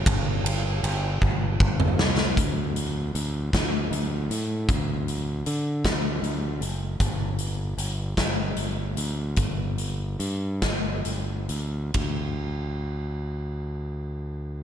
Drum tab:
RD |x-x-x-------|------------|------------|------------|
HH |------------|x-x-x-x-x-x-|x-x-x-x-x-x-|x-x-x-x-x-x-|
SD |----------oo|------o-----|------o-----|------o-----|
T2 |---------o--|------------|------------|------------|
BD |o-----o-o---|o-----o-----|o-----o-----|o-----o-----|

RD |------------|b-----------|
HH |x-x-x-x-x-x-|------------|
SD |------o-----|------------|
T2 |------------|------------|
BD |o-----o-----|o-----------|